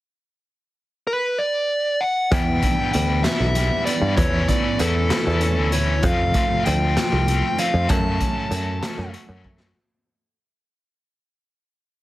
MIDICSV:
0, 0, Header, 1, 6, 480
1, 0, Start_track
1, 0, Tempo, 619195
1, 357, Time_signature, 6, 3, 24, 8
1, 9322, End_track
2, 0, Start_track
2, 0, Title_t, "Lead electric guitar"
2, 0, Program_c, 0, 29
2, 831, Note_on_c, 0, 71, 74
2, 1073, Note_on_c, 0, 74, 93
2, 1082, Note_off_c, 0, 71, 0
2, 1555, Note_on_c, 0, 78, 75
2, 1571, Note_off_c, 0, 74, 0
2, 1803, Note_off_c, 0, 78, 0
2, 1806, Note_on_c, 0, 79, 88
2, 2259, Note_off_c, 0, 79, 0
2, 2268, Note_on_c, 0, 79, 82
2, 2504, Note_on_c, 0, 76, 96
2, 2522, Note_off_c, 0, 79, 0
2, 2984, Note_off_c, 0, 76, 0
2, 2987, Note_on_c, 0, 74, 77
2, 3226, Note_off_c, 0, 74, 0
2, 3229, Note_on_c, 0, 73, 89
2, 3476, Note_off_c, 0, 73, 0
2, 3479, Note_on_c, 0, 74, 78
2, 3717, Note_on_c, 0, 69, 81
2, 3728, Note_off_c, 0, 74, 0
2, 4436, Note_on_c, 0, 73, 77
2, 4462, Note_off_c, 0, 69, 0
2, 4663, Note_off_c, 0, 73, 0
2, 4691, Note_on_c, 0, 77, 103
2, 5136, Note_off_c, 0, 77, 0
2, 5156, Note_on_c, 0, 79, 89
2, 5398, Note_off_c, 0, 79, 0
2, 5407, Note_on_c, 0, 79, 103
2, 5885, Note_off_c, 0, 79, 0
2, 5888, Note_on_c, 0, 77, 87
2, 6121, Note_off_c, 0, 77, 0
2, 6124, Note_on_c, 0, 81, 95
2, 7051, Note_off_c, 0, 81, 0
2, 9322, End_track
3, 0, Start_track
3, 0, Title_t, "Clean electric guitar"
3, 0, Program_c, 1, 27
3, 2038, Note_on_c, 1, 62, 71
3, 2755, Note_on_c, 1, 67, 69
3, 3239, Note_off_c, 1, 67, 0
3, 3241, Note_off_c, 1, 62, 0
3, 3481, Note_on_c, 1, 59, 66
3, 3962, Note_on_c, 1, 52, 67
3, 4426, Note_off_c, 1, 52, 0
3, 4436, Note_on_c, 1, 52, 64
3, 4672, Note_off_c, 1, 52, 0
3, 4683, Note_off_c, 1, 59, 0
3, 9322, End_track
4, 0, Start_track
4, 0, Title_t, "Overdriven electric guitar"
4, 0, Program_c, 2, 29
4, 1802, Note_on_c, 2, 40, 87
4, 1807, Note_on_c, 2, 47, 95
4, 1809, Note_on_c, 2, 52, 86
4, 1810, Note_on_c, 2, 55, 88
4, 1816, Note_on_c, 2, 59, 90
4, 1818, Note_on_c, 2, 64, 103
4, 2035, Note_off_c, 2, 64, 0
4, 2038, Note_on_c, 2, 64, 77
4, 2039, Note_off_c, 2, 55, 0
4, 2039, Note_off_c, 2, 59, 0
4, 2042, Note_on_c, 2, 59, 71
4, 2048, Note_on_c, 2, 55, 64
4, 2052, Note_off_c, 2, 52, 0
4, 2055, Note_on_c, 2, 52, 54
4, 2269, Note_off_c, 2, 52, 0
4, 2272, Note_on_c, 2, 52, 73
4, 2275, Note_off_c, 2, 55, 0
4, 2284, Note_off_c, 2, 47, 0
4, 2284, Note_on_c, 2, 55, 67
4, 2286, Note_off_c, 2, 59, 0
4, 2289, Note_off_c, 2, 64, 0
4, 2289, Note_on_c, 2, 59, 77
4, 2292, Note_on_c, 2, 64, 78
4, 2509, Note_off_c, 2, 64, 0
4, 2512, Note_off_c, 2, 59, 0
4, 2518, Note_on_c, 2, 64, 70
4, 2522, Note_on_c, 2, 59, 69
4, 2524, Note_off_c, 2, 55, 0
4, 2528, Note_off_c, 2, 52, 0
4, 2533, Note_on_c, 2, 55, 56
4, 2537, Note_on_c, 2, 52, 52
4, 2752, Note_off_c, 2, 52, 0
4, 2757, Note_off_c, 2, 55, 0
4, 2758, Note_off_c, 2, 59, 0
4, 2761, Note_on_c, 2, 52, 64
4, 2766, Note_on_c, 2, 55, 70
4, 2768, Note_on_c, 2, 59, 72
4, 2769, Note_off_c, 2, 64, 0
4, 2779, Note_on_c, 2, 64, 79
4, 3001, Note_off_c, 2, 64, 0
4, 3008, Note_off_c, 2, 59, 0
4, 3011, Note_off_c, 2, 55, 0
4, 3011, Note_on_c, 2, 64, 66
4, 3013, Note_off_c, 2, 52, 0
4, 3017, Note_on_c, 2, 59, 65
4, 3021, Note_on_c, 2, 55, 62
4, 3023, Note_on_c, 2, 52, 52
4, 3232, Note_off_c, 2, 52, 0
4, 3232, Note_off_c, 2, 64, 0
4, 3235, Note_off_c, 2, 59, 0
4, 3237, Note_off_c, 2, 55, 0
4, 3241, Note_on_c, 2, 52, 83
4, 3248, Note_on_c, 2, 61, 99
4, 3249, Note_on_c, 2, 57, 93
4, 3253, Note_on_c, 2, 64, 95
4, 3472, Note_off_c, 2, 64, 0
4, 3482, Note_off_c, 2, 61, 0
4, 3482, Note_on_c, 2, 64, 67
4, 3492, Note_on_c, 2, 61, 68
4, 3495, Note_off_c, 2, 57, 0
4, 3498, Note_on_c, 2, 57, 59
4, 3715, Note_off_c, 2, 52, 0
4, 3725, Note_on_c, 2, 52, 63
4, 3727, Note_off_c, 2, 61, 0
4, 3729, Note_off_c, 2, 57, 0
4, 3732, Note_on_c, 2, 57, 70
4, 3733, Note_off_c, 2, 64, 0
4, 3736, Note_on_c, 2, 61, 73
4, 3742, Note_on_c, 2, 64, 81
4, 3956, Note_off_c, 2, 64, 0
4, 3965, Note_on_c, 2, 64, 73
4, 3967, Note_off_c, 2, 61, 0
4, 3976, Note_on_c, 2, 61, 58
4, 3981, Note_off_c, 2, 57, 0
4, 3984, Note_on_c, 2, 57, 54
4, 4192, Note_off_c, 2, 52, 0
4, 4201, Note_on_c, 2, 52, 69
4, 4203, Note_off_c, 2, 61, 0
4, 4204, Note_off_c, 2, 57, 0
4, 4207, Note_on_c, 2, 57, 69
4, 4208, Note_off_c, 2, 64, 0
4, 4212, Note_on_c, 2, 61, 71
4, 4218, Note_on_c, 2, 64, 76
4, 4437, Note_off_c, 2, 64, 0
4, 4447, Note_on_c, 2, 64, 72
4, 4449, Note_off_c, 2, 61, 0
4, 4457, Note_off_c, 2, 57, 0
4, 4458, Note_on_c, 2, 61, 63
4, 4460, Note_on_c, 2, 57, 53
4, 4515, Note_off_c, 2, 40, 0
4, 4668, Note_off_c, 2, 52, 0
4, 4671, Note_off_c, 2, 64, 0
4, 4677, Note_off_c, 2, 61, 0
4, 4683, Note_on_c, 2, 41, 99
4, 4688, Note_off_c, 2, 57, 0
4, 4690, Note_on_c, 2, 48, 97
4, 4691, Note_on_c, 2, 53, 88
4, 4691, Note_on_c, 2, 57, 89
4, 4697, Note_on_c, 2, 65, 104
4, 4700, Note_on_c, 2, 60, 90
4, 4920, Note_off_c, 2, 65, 0
4, 4926, Note_off_c, 2, 60, 0
4, 4929, Note_on_c, 2, 65, 67
4, 4934, Note_off_c, 2, 57, 0
4, 4935, Note_off_c, 2, 53, 0
4, 4935, Note_on_c, 2, 60, 64
4, 4937, Note_on_c, 2, 57, 65
4, 4944, Note_on_c, 2, 53, 62
4, 5155, Note_off_c, 2, 53, 0
4, 5163, Note_off_c, 2, 41, 0
4, 5164, Note_off_c, 2, 60, 0
4, 5164, Note_on_c, 2, 53, 72
4, 5166, Note_off_c, 2, 57, 0
4, 5167, Note_off_c, 2, 48, 0
4, 5169, Note_off_c, 2, 65, 0
4, 5169, Note_on_c, 2, 57, 68
4, 5173, Note_on_c, 2, 60, 71
4, 5178, Note_on_c, 2, 65, 75
4, 5395, Note_off_c, 2, 65, 0
4, 5401, Note_off_c, 2, 60, 0
4, 5404, Note_on_c, 2, 65, 76
4, 5409, Note_off_c, 2, 53, 0
4, 5410, Note_on_c, 2, 60, 64
4, 5411, Note_off_c, 2, 57, 0
4, 5414, Note_on_c, 2, 57, 65
4, 5418, Note_on_c, 2, 53, 61
4, 5634, Note_off_c, 2, 53, 0
4, 5644, Note_on_c, 2, 53, 75
4, 5645, Note_off_c, 2, 60, 0
4, 5647, Note_off_c, 2, 57, 0
4, 5649, Note_off_c, 2, 65, 0
4, 5650, Note_on_c, 2, 57, 75
4, 5655, Note_on_c, 2, 60, 75
4, 5658, Note_on_c, 2, 65, 71
4, 5872, Note_off_c, 2, 65, 0
4, 5878, Note_off_c, 2, 60, 0
4, 5881, Note_on_c, 2, 65, 65
4, 5886, Note_off_c, 2, 53, 0
4, 5888, Note_on_c, 2, 60, 66
4, 5889, Note_off_c, 2, 57, 0
4, 5892, Note_on_c, 2, 57, 59
4, 5895, Note_on_c, 2, 53, 54
4, 6108, Note_off_c, 2, 65, 0
4, 6111, Note_off_c, 2, 60, 0
4, 6115, Note_off_c, 2, 53, 0
4, 6123, Note_on_c, 2, 42, 85
4, 6130, Note_on_c, 2, 49, 93
4, 6132, Note_off_c, 2, 57, 0
4, 6132, Note_on_c, 2, 54, 93
4, 6135, Note_on_c, 2, 57, 98
4, 6136, Note_on_c, 2, 66, 99
4, 6139, Note_on_c, 2, 61, 106
4, 6354, Note_off_c, 2, 66, 0
4, 6361, Note_off_c, 2, 61, 0
4, 6363, Note_on_c, 2, 66, 74
4, 6367, Note_off_c, 2, 57, 0
4, 6369, Note_off_c, 2, 54, 0
4, 6371, Note_on_c, 2, 61, 62
4, 6377, Note_on_c, 2, 57, 61
4, 6378, Note_on_c, 2, 54, 53
4, 6590, Note_off_c, 2, 54, 0
4, 6598, Note_off_c, 2, 57, 0
4, 6600, Note_on_c, 2, 54, 67
4, 6603, Note_off_c, 2, 42, 0
4, 6604, Note_off_c, 2, 61, 0
4, 6605, Note_off_c, 2, 66, 0
4, 6606, Note_off_c, 2, 49, 0
4, 6607, Note_on_c, 2, 57, 72
4, 6614, Note_on_c, 2, 61, 77
4, 6615, Note_on_c, 2, 66, 73
4, 6839, Note_off_c, 2, 66, 0
4, 6846, Note_off_c, 2, 61, 0
4, 6848, Note_on_c, 2, 66, 71
4, 6854, Note_off_c, 2, 57, 0
4, 6855, Note_off_c, 2, 54, 0
4, 6855, Note_on_c, 2, 61, 68
4, 6863, Note_on_c, 2, 57, 64
4, 6864, Note_on_c, 2, 54, 59
4, 7077, Note_off_c, 2, 54, 0
4, 7083, Note_off_c, 2, 57, 0
4, 7086, Note_on_c, 2, 54, 68
4, 7089, Note_off_c, 2, 61, 0
4, 7092, Note_on_c, 2, 57, 71
4, 7094, Note_off_c, 2, 66, 0
4, 7098, Note_on_c, 2, 61, 67
4, 7104, Note_on_c, 2, 66, 74
4, 7318, Note_off_c, 2, 66, 0
4, 7326, Note_off_c, 2, 61, 0
4, 7328, Note_on_c, 2, 66, 61
4, 7333, Note_off_c, 2, 57, 0
4, 7335, Note_off_c, 2, 54, 0
4, 7335, Note_on_c, 2, 61, 65
4, 7342, Note_on_c, 2, 57, 56
4, 7344, Note_on_c, 2, 54, 50
4, 7550, Note_off_c, 2, 66, 0
4, 7553, Note_off_c, 2, 61, 0
4, 7557, Note_off_c, 2, 57, 0
4, 7558, Note_off_c, 2, 54, 0
4, 9322, End_track
5, 0, Start_track
5, 0, Title_t, "Picked electric bass"
5, 0, Program_c, 3, 34
5, 1794, Note_on_c, 3, 40, 100
5, 2019, Note_off_c, 3, 40, 0
5, 2286, Note_on_c, 3, 38, 78
5, 2505, Note_off_c, 3, 38, 0
5, 2636, Note_on_c, 3, 35, 75
5, 2860, Note_off_c, 3, 35, 0
5, 3112, Note_on_c, 3, 43, 78
5, 3228, Note_off_c, 3, 43, 0
5, 3237, Note_on_c, 3, 40, 97
5, 3461, Note_off_c, 3, 40, 0
5, 3721, Note_on_c, 3, 40, 85
5, 3944, Note_off_c, 3, 40, 0
5, 4084, Note_on_c, 3, 40, 73
5, 4320, Note_off_c, 3, 40, 0
5, 4320, Note_on_c, 3, 38, 84
5, 4654, Note_off_c, 3, 38, 0
5, 4679, Note_on_c, 3, 41, 98
5, 4903, Note_off_c, 3, 41, 0
5, 5171, Note_on_c, 3, 38, 88
5, 5389, Note_off_c, 3, 38, 0
5, 5522, Note_on_c, 3, 36, 78
5, 5744, Note_off_c, 3, 36, 0
5, 5998, Note_on_c, 3, 41, 80
5, 6111, Note_off_c, 3, 41, 0
5, 6120, Note_on_c, 3, 42, 95
5, 6343, Note_off_c, 3, 42, 0
5, 6596, Note_on_c, 3, 42, 92
5, 6820, Note_off_c, 3, 42, 0
5, 6961, Note_on_c, 3, 42, 75
5, 7072, Note_off_c, 3, 42, 0
5, 7199, Note_on_c, 3, 42, 78
5, 7532, Note_off_c, 3, 42, 0
5, 9322, End_track
6, 0, Start_track
6, 0, Title_t, "Drums"
6, 1796, Note_on_c, 9, 36, 104
6, 1796, Note_on_c, 9, 42, 74
6, 1873, Note_off_c, 9, 42, 0
6, 1874, Note_off_c, 9, 36, 0
6, 2035, Note_on_c, 9, 42, 60
6, 2036, Note_on_c, 9, 36, 70
6, 2112, Note_off_c, 9, 42, 0
6, 2113, Note_off_c, 9, 36, 0
6, 2275, Note_on_c, 9, 42, 58
6, 2352, Note_off_c, 9, 42, 0
6, 2513, Note_on_c, 9, 38, 104
6, 2513, Note_on_c, 9, 42, 75
6, 2591, Note_off_c, 9, 38, 0
6, 2591, Note_off_c, 9, 42, 0
6, 2754, Note_on_c, 9, 42, 65
6, 2831, Note_off_c, 9, 42, 0
6, 2998, Note_on_c, 9, 42, 62
6, 3076, Note_off_c, 9, 42, 0
6, 3236, Note_on_c, 9, 36, 104
6, 3236, Note_on_c, 9, 42, 81
6, 3314, Note_off_c, 9, 36, 0
6, 3314, Note_off_c, 9, 42, 0
6, 3477, Note_on_c, 9, 36, 70
6, 3477, Note_on_c, 9, 42, 59
6, 3554, Note_off_c, 9, 36, 0
6, 3554, Note_off_c, 9, 42, 0
6, 3715, Note_on_c, 9, 42, 54
6, 3793, Note_off_c, 9, 42, 0
6, 3956, Note_on_c, 9, 38, 101
6, 3956, Note_on_c, 9, 42, 74
6, 4033, Note_off_c, 9, 38, 0
6, 4033, Note_off_c, 9, 42, 0
6, 4192, Note_on_c, 9, 42, 57
6, 4270, Note_off_c, 9, 42, 0
6, 4435, Note_on_c, 9, 42, 57
6, 4512, Note_off_c, 9, 42, 0
6, 4673, Note_on_c, 9, 42, 77
6, 4676, Note_on_c, 9, 36, 100
6, 4751, Note_off_c, 9, 42, 0
6, 4754, Note_off_c, 9, 36, 0
6, 4915, Note_on_c, 9, 42, 54
6, 4918, Note_on_c, 9, 36, 72
6, 4993, Note_off_c, 9, 42, 0
6, 4995, Note_off_c, 9, 36, 0
6, 5161, Note_on_c, 9, 42, 55
6, 5239, Note_off_c, 9, 42, 0
6, 5401, Note_on_c, 9, 38, 99
6, 5401, Note_on_c, 9, 42, 77
6, 5479, Note_off_c, 9, 38, 0
6, 5479, Note_off_c, 9, 42, 0
6, 5643, Note_on_c, 9, 42, 58
6, 5721, Note_off_c, 9, 42, 0
6, 5880, Note_on_c, 9, 42, 61
6, 5958, Note_off_c, 9, 42, 0
6, 6117, Note_on_c, 9, 42, 78
6, 6121, Note_on_c, 9, 36, 103
6, 6194, Note_off_c, 9, 42, 0
6, 6199, Note_off_c, 9, 36, 0
6, 6361, Note_on_c, 9, 36, 71
6, 6361, Note_on_c, 9, 42, 59
6, 6439, Note_off_c, 9, 36, 0
6, 6439, Note_off_c, 9, 42, 0
6, 6600, Note_on_c, 9, 42, 62
6, 6678, Note_off_c, 9, 42, 0
6, 6842, Note_on_c, 9, 38, 104
6, 6842, Note_on_c, 9, 42, 79
6, 6920, Note_off_c, 9, 38, 0
6, 6920, Note_off_c, 9, 42, 0
6, 7083, Note_on_c, 9, 42, 65
6, 7161, Note_off_c, 9, 42, 0
6, 7321, Note_on_c, 9, 36, 57
6, 7399, Note_off_c, 9, 36, 0
6, 7442, Note_on_c, 9, 38, 81
6, 7520, Note_off_c, 9, 38, 0
6, 9322, End_track
0, 0, End_of_file